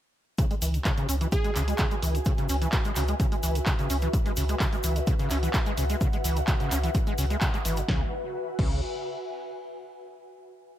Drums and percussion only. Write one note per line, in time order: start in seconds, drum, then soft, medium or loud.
0.38 kick loud
0.38 closed hi-hat medium
0.38 shaker soft
0.51 closed hi-hat soft
0.51 shaker soft
0.62 open hi-hat loud
0.62 shaker medium
0.74 closed hi-hat soft
0.74 shaker soft
0.85 kick loud
0.85 clap loud
0.85 closed hi-hat medium
0.85 shaker soft
0.97 closed hi-hat soft
0.97 shaker soft
1.09 open hi-hat loud
1.09 shaker medium
1.21 closed hi-hat medium
1.21 shaker soft
1.32 kick loud
1.32 closed hi-hat medium
1.32 shaker medium
1.44 closed hi-hat soft
1.44 shaker soft
1.55 clap medium
1.55 open hi-hat loud
1.55 shaker medium
1.68 closed hi-hat medium
1.68 shaker soft
1.78 kick loud
1.78 clap loud
1.78 closed hi-hat medium
1.78 shaker soft
1.91 closed hi-hat soft
1.91 shaker soft
2.02 open hi-hat loud
2.02 shaker medium
2.15 closed hi-hat medium
2.15 shaker soft
2.25 kick loud
2.25 closed hi-hat medium
2.25 shaker medium
2.38 closed hi-hat soft
2.38 shaker soft
2.49 open hi-hat loud
2.49 shaker medium
2.62 closed hi-hat soft
2.62 shaker soft
2.72 kick loud
2.72 clap loud
2.72 closed hi-hat medium
2.72 shaker soft
2.85 closed hi-hat soft
2.85 shaker soft
2.96 clap medium
2.96 open hi-hat loud
2.96 shaker medium
3.08 closed hi-hat soft
3.08 shaker soft
3.20 kick loud
3.20 closed hi-hat medium
3.20 shaker medium
3.32 closed hi-hat soft
3.32 shaker soft
3.43 open hi-hat loud
3.43 shaker medium
3.55 closed hi-hat soft
3.55 shaker soft
3.66 kick loud
3.66 clap loud
3.66 closed hi-hat medium
3.66 shaker soft
3.79 closed hi-hat soft
3.79 shaker soft
3.90 open hi-hat loud
3.90 shaker medium
4.01 closed hi-hat medium
4.01 shaker soft
4.13 kick loud
4.13 closed hi-hat medium
4.13 shaker medium
4.26 closed hi-hat soft
4.26 shaker soft
4.36 open hi-hat loud
4.36 shaker medium
4.49 closed hi-hat soft
4.49 shaker soft
4.60 kick loud
4.60 clap loud
4.60 closed hi-hat medium
4.60 shaker medium
4.73 closed hi-hat soft
4.73 shaker soft
4.83 open hi-hat loud
4.83 shaker medium
4.96 closed hi-hat soft
4.96 shaker soft
5.07 kick loud
5.07 closed hi-hat medium
5.07 shaker medium
5.19 closed hi-hat soft
5.19 shaker soft
5.30 clap medium
5.30 open hi-hat loud
5.30 shaker medium
5.43 closed hi-hat soft
5.43 shaker soft
5.53 kick loud
5.53 clap loud
5.53 closed hi-hat medium
5.53 shaker medium
5.66 closed hi-hat soft
5.66 shaker soft
5.77 open hi-hat loud
5.77 shaker medium
5.89 closed hi-hat soft
5.89 shaker soft
6.01 kick loud
6.01 closed hi-hat medium
6.01 shaker medium
6.13 closed hi-hat soft
6.13 shaker soft
6.24 open hi-hat loud
6.24 shaker loud
6.37 closed hi-hat soft
6.37 shaker soft
6.47 kick loud
6.47 clap loud
6.47 closed hi-hat medium
6.47 shaker soft
6.60 closed hi-hat soft
6.60 shaker soft
6.71 clap medium
6.71 open hi-hat loud
6.71 shaker loud
6.83 closed hi-hat soft
6.83 shaker soft
6.94 kick loud
6.94 closed hi-hat medium
6.94 shaker soft
7.07 closed hi-hat soft
7.07 shaker soft
7.18 open hi-hat loud
7.18 shaker medium
7.30 closed hi-hat soft
7.30 shaker soft
7.41 kick loud
7.41 clap loud
7.41 closed hi-hat medium
7.41 shaker medium
7.54 closed hi-hat soft
7.54 shaker soft
7.65 open hi-hat loud
7.65 shaker medium
7.77 closed hi-hat medium
7.77 shaker soft
7.88 kick loud
7.88 snare medium
8.59 kick loud
8.59 crash medium